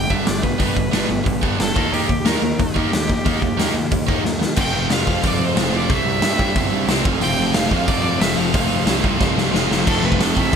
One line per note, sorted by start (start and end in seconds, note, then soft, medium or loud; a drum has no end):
0.00 0.12 G5 loud
0.10 0.20 G1 loud
0.10 0.25 G2 medium
0.10 0.25 D3 medium
0.10 0.25 G3 medium
0.10 0.25 B3 loud
0.10 0.26 D4 medium
0.10 0.29 E5 loud
0.10 kick medium
0.26 0.48 G1 medium
0.26 0.41 G2 medium
0.26 0.42 D3 medium
0.26 0.41 G3 medium
0.26 0.41 B3 medium
0.26 0.44 D5 loud
0.26 snare loud
0.26 open hi-hat medium
0.42 0.57 G2 medium
0.42 0.58 D3 medium
0.42 0.57 G3 medium
0.42 0.57 B3 medium
0.42 1.42 B4 medium
0.42 kick medium
0.58 0.70 G1 medium
0.58 0.75 G2 medium
0.58 0.75 D3 loud
0.58 0.74 G3 medium
0.58 0.75 B3 medium
0.58 0.75 D4 medium
0.58 kick loud
0.58 open hi-hat medium
0.76 0.87 G1 medium
0.76 0.91 G2 medium
0.76 0.91 D3 medium
0.76 0.90 G3 medium
0.76 0.91 B3 medium
0.76 kick medium
0.91 1.03 G1 medium
0.91 1.08 G2 medium
0.91 1.08 D3 loud
0.91 1.07 G3 medium
0.91 1.08 B3 loud
0.91 1.08 D4 loud
0.91 snare loud
0.91 open hi-hat medium
1.08 1.20 G1 medium
1.08 1.24 G2 medium
1.08 1.24 D3 medium
1.08 1.22 G3 medium
1.08 1.24 B3 medium
1.24 1.36 G1 medium
1.24 1.41 G2 medium
1.24 1.41 D3 medium
1.24 1.40 G3 medium
1.24 1.40 B3 medium
1.24 kick loud
1.24 open hi-hat soft
1.41 1.53 G1 medium
1.41 1.58 G2 medium
1.41 1.58 D3 loud
1.41 1.56 G3 medium
1.41 1.57 B3 loud
1.41 1.58 D4 medium
1.41 kick loud
1.57 1.70 G1 medium
1.57 1.74 G2 medium
1.57 1.74 D3 medium
1.57 1.73 G3 medium
1.57 1.73 B3 medium
1.57 1.95 A4 medium
1.57 snare loud
1.57 open hi-hat medium
1.75 1.86 D#2 medium
1.75 1.89 D#3 medium
1.75 1.90 A#3 medium
1.75 1.90 D#4 medium
1.75 kick loud
1.90 2.03 D#2 medium
1.90 2.07 D#3 medium
1.90 2.07 A#3 medium
1.90 2.07 D#4 loud
1.90 2.28 G4 medium
1.90 open hi-hat medium
2.09 2.19 D#2 medium
2.09 2.23 D#3 medium
2.09 2.24 A#3 medium
2.09 kick medium
2.25 2.36 D#2 medium
2.25 2.40 D#3 medium
2.25 2.41 A#3 medium
2.25 2.41 D#4 medium
2.25 2.61 A#4 medium
2.25 snare loud
2.25 open hi-hat medium
2.42 2.52 D#2 medium
2.42 2.56 D#3 medium
2.42 2.57 A#3 medium
2.59 2.70 D#2 medium
2.59 2.73 D#3 medium
2.59 2.74 A#3 medium
2.59 4.24 G4 loud
2.59 kick loud
2.59 open hi-hat medium
2.74 2.85 D#2 medium
2.74 2.90 D#3 medium
2.74 2.91 A#3 medium
2.74 2.91 D#4 loud
2.74 kick medium
2.92 3.14 D#2 medium
2.92 3.06 D#3 medium
2.92 3.07 A#3 medium
2.92 snare loud
2.92 open hi-hat medium
3.07 3.22 D#3 medium
3.07 3.23 A#3 medium
3.07 kick medium
3.25 3.36 D#2 medium
3.25 3.39 D#3 medium
3.25 3.40 A#3 medium
3.25 3.41 D#4 medium
3.25 kick loud
3.25 open hi-hat medium
3.40 3.52 D#2 medium
3.40 3.55 D#3 medium
3.40 3.56 A#3 medium
3.40 kick medium
3.57 3.68 D#2 medium
3.57 3.73 D#3 medium
3.57 3.73 A#3 medium
3.57 3.74 D#4 medium
3.57 snare loud
3.57 open hi-hat medium
3.74 3.84 D#2 loud
3.74 3.89 D#3 medium
3.74 3.89 A#3 medium
3.91 4.02 D#2 medium
3.91 4.05 D#3 medium
3.91 4.06 A#3 medium
3.91 kick loud
3.91 open hi-hat medium
4.06 4.18 D#2 medium
4.06 4.21 D#3 medium
4.06 4.22 A#3 medium
4.06 4.23 D#4 medium
4.06 kick medium
4.23 4.45 D#2 medium
4.23 4.38 D#3 medium
4.23 4.38 A#3 medium
4.23 snare medium
4.39 4.54 D#3 medium
4.39 4.55 A#3 medium
4.39 snare medium
4.56 4.71 F1 medium
4.56 4.87 F2 medium
4.56 4.88 C3 loud
4.56 4.88 F3 medium
4.56 4.89 A3 medium
4.56 4.90 C4 loud
4.56 4.90 F4 medium
4.56 4.88 G5 loud
4.56 kick loud
4.56 crash loud
4.73 4.87 F1 medium
4.89 5.04 F1 medium
4.89 5.05 F2 medium
4.89 5.04 C3 medium
4.89 5.06 F3 medium
4.89 5.06 A3 medium
4.89 5.06 C4 medium
4.89 5.04 F4 loud
4.89 5.28 F5 loud
4.89 snare loud
4.89 open hi-hat medium
5.05 5.21 F2 medium
5.05 5.22 C3 medium
5.05 5.22 F3 medium
5.05 5.23 A3 medium
5.05 5.24 C4 medium
5.05 5.24 F4 loud
5.05 kick medium
5.22 5.37 F1 medium
5.22 5.53 F2 medium
5.22 5.55 C3 medium
5.22 5.54 F3 medium
5.22 5.55 A3 loud
5.22 5.56 C4 loud
5.22 5.57 F4 loud
5.22 kick loud
5.22 open hi-hat medium
5.27 5.46 D5 loud
5.39 5.53 F2 medium
5.45 5.78 C5 medium
5.55 5.69 F1 medium
5.55 5.71 F2 medium
5.55 5.71 C3 medium
5.55 5.73 F3 medium
5.55 5.73 A3 medium
5.55 5.73 C4 medium
5.55 5.71 F4 medium
5.55 snare loud
5.55 open hi-hat medium
5.72 5.86 F1 medium
5.72 5.88 F2 medium
5.72 5.88 C3 medium
5.72 5.89 F3 medium
5.72 5.89 A3 medium
5.72 5.91 C4 medium
5.72 5.88 F4 medium
5.77 5.91 D5 medium
5.89 6.03 C2 loud
5.89 6.21 C3 medium
5.89 6.21 E3 medium
5.89 6.22 G3 loud
5.89 6.23 C4 medium
5.89 6.22 E4 loud
5.89 kick loud
5.89 open hi-hat medium
5.94 6.87 E5 loud
6.05 6.19 C2 medium
6.21 6.35 G2 medium
6.21 6.39 C3 medium
6.21 6.39 E3 medium
6.21 6.38 G3 medium
6.21 6.38 C4 medium
6.21 6.37 E4 loud
6.21 snare loud
6.21 open hi-hat medium
6.38 6.53 G2 loud
6.38 6.54 C3 medium
6.38 6.54 E3 medium
6.38 6.54 G3 medium
6.38 6.56 C4 loud
6.38 6.56 E4 loud
6.38 kick medium
6.55 6.69 G1 medium
6.55 6.86 C3 medium
6.55 6.87 E3 loud
6.55 6.87 G3 loud
6.55 6.88 C4 loud
6.55 6.88 E4 loud
6.55 kick loud
6.55 open hi-hat medium
6.71 6.85 G2 medium
6.87 7.01 C2 loud
6.87 7.03 C3 medium
6.87 7.04 E3 loud
6.87 7.04 G3 medium
6.87 7.05 C4 medium
6.87 7.04 E4 loud
6.87 snare loud
6.87 open hi-hat medium
7.04 7.19 F1 medium
7.04 7.21 F2 loud
7.04 7.20 C3 loud
7.04 7.23 F3 medium
7.04 7.23 A3 loud
7.04 7.23 C4 loud
7.04 7.22 F4 loud
7.04 kick loud
7.21 7.35 F1 medium
7.21 7.54 F2 loud
7.21 7.53 C3 loud
7.21 7.56 F3 medium
7.21 7.55 A3 medium
7.21 7.55 C4 medium
7.21 7.54 F4 loud
7.21 7.55 G5 loud
7.21 open hi-hat medium
7.37 7.51 F1 medium
7.54 7.68 F1 medium
7.54 7.69 F2 medium
7.54 7.69 C3 medium
7.54 7.70 F3 medium
7.54 7.70 A3 medium
7.54 7.71 C4 medium
7.54 7.71 F4 medium
7.54 7.89 F5 loud
7.54 snare loud
7.54 open hi-hat medium
7.70 7.87 F2 medium
7.70 7.85 F2 medium
7.70 7.86 C3 medium
7.70 7.88 F3 medium
7.70 7.88 A3 loud
7.70 7.87 C4 loud
7.70 7.87 F4 loud
7.70 kick medium
7.87 8.01 F1 medium
7.87 8.19 F2 medium
7.87 8.18 C3 loud
7.87 8.22 F3 loud
7.87 8.22 A3 medium
7.87 8.20 C4 loud
7.87 8.20 F4 loud
7.87 8.22 D5 loud
7.87 kick loud
7.87 open hi-hat medium
8.03 8.17 F2 medium
8.19 8.35 F1 loud
8.19 8.36 F2 medium
8.19 8.35 C3 medium
8.19 8.37 F3 medium
8.19 8.37 A3 medium
8.19 8.39 C4 loud
8.19 8.39 F4 loud
8.19 8.39 E5 medium
8.19 snare loud
8.19 open hi-hat medium
8.36 8.50 F1 medium
8.36 8.53 F2 medium
8.36 8.52 C3 loud
8.36 8.54 F3 medium
8.36 8.53 A3 medium
8.36 8.53 C4 medium
8.36 8.52 F4 medium
8.36 9.03 F5 medium
8.53 8.68 F1 medium
8.53 8.85 F2 medium
8.53 8.85 C3 loud
8.53 8.87 F3 medium
8.53 8.86 A3 loud
8.53 8.85 C4 loud
8.53 8.85 F4 loud
8.53 kick loud
8.53 open hi-hat medium
8.69 8.83 F1 medium
8.86 9.00 C2 medium
8.86 9.00 F2 medium
8.86 9.01 C3 medium
8.86 9.01 F3 medium
8.86 9.01 A3 medium
8.86 9.02 C4 medium
8.86 9.03 F4 medium
8.86 snare loud
8.86 open hi-hat medium
9.01 9.17 C2 loud
9.01 9.18 F2 medium
9.01 9.17 C3 medium
9.01 9.19 F3 loud
9.01 9.19 A3 loud
9.01 9.18 C4 medium
9.01 9.18 F4 medium
9.01 kick loud
9.06 9.51 F2 medium
9.18 9.34 C2 medium
9.18 9.52 F2 medium
9.18 9.52 C3 medium
9.18 9.53 F3 medium
9.18 9.53 A3 medium
9.18 9.52 C4 loud
9.18 9.51 F4 loud
9.18 kick loud
9.18 snare medium
9.36 9.50 C2 medium
9.36 snare medium
9.53 9.67 F1 loud
9.53 9.68 F2 medium
9.53 9.68 C3 medium
9.53 9.68 F3 medium
9.53 9.69 A3 medium
9.53 9.70 C4 medium
9.53 9.70 F4 loud
9.53 snare medium
9.69 9.83 F1 medium
9.69 9.83 F2 medium
9.69 9.84 C3 medium
9.69 9.85 F3 medium
9.69 9.85 A3 medium
9.69 9.85 C4 medium
9.69 9.86 F4 medium
9.69 snare medium
9.85 10.02 F1 medium
9.85 10.02 F2 medium
9.85 10.02 C3 loud
9.85 10.01 F3 loud
9.85 10.01 A3 loud
9.85 10.01 C4 loud
9.85 10.56 F4 loud
9.85 10.07 A4 medium
9.85 kick loud
9.85 crash loud
10.01 10.18 F1 medium
10.01 10.17 F2 medium
10.01 10.18 C3 medium
10.01 10.19 F3 medium
10.01 10.19 A3 medium
10.01 10.20 C4 medium
10.01 10.22 B4 medium
10.12 kick medium
10.18 10.34 F1 medium
10.18 10.35 F2 medium
10.18 10.34 C3 medium
10.18 10.34 F3 medium
10.18 10.33 A3 loud
10.18 10.34 C4 loud
10.18 10.40 A4 medium
10.18 snare loud
10.18 open hi-hat medium
10.34 10.52 A1 loud
10.34 10.50 F2 loud
10.34 10.51 C3 medium
10.34 10.51 F3 loud
10.34 10.51 A3 loud
10.34 10.52 C4 loud
10.34 kick medium
10.39 10.56 E5 medium
10.51 10.56 F2 medium
10.51 10.56 C3 medium
10.51 10.56 F3 loud
10.51 10.56 A3 medium